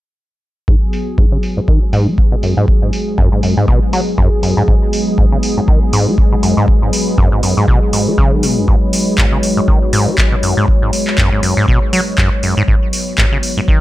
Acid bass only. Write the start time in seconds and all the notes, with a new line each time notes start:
0.68 G#2
1.18 G#2
1.32 C#3
1.57 G#2
1.68 D#3
1.93 G#2
2.07 G#3
2.32 B2
2.43 F#2
2.57 G#2
2.82 G#2
3.18 F#2
3.32 G#2
3.43 F#2
3.57 G#2
3.68 B2
3.93 F#3
4.18 F#2
4.43 F#2
4.57 G#2
4.68 G#2
5.18 G#2
5.32 C#3
5.57 G#2
5.68 D#3
5.93 G#2
6.07 G#3
6.32 B2
6.43 F#2
6.57 G#2
6.82 G#2
7.18 F#2
7.32 G#2
7.43 F#2
7.57 G#2
7.68 B2
7.93 G#2
8.07 G#3
8.18 C#3
8.32 D#3
8.43 B2
8.57 F#2
8.68 G#2
9.18 G#2
9.32 C#3
9.57 G#2
9.68 D#3
9.93 G#2
10.07 G#3
10.32 B2
10.43 F#2
10.57 G#2
10.82 G#2
11.18 F#2
11.32 G#2
11.43 F#2
11.57 G#2
11.68 B2
11.93 F#3
12.18 F#2
12.43 F#2
12.57 G#2
12.68 G#2
13.18 G#2
13.32 C#3
13.57 G#2
13.68 D#3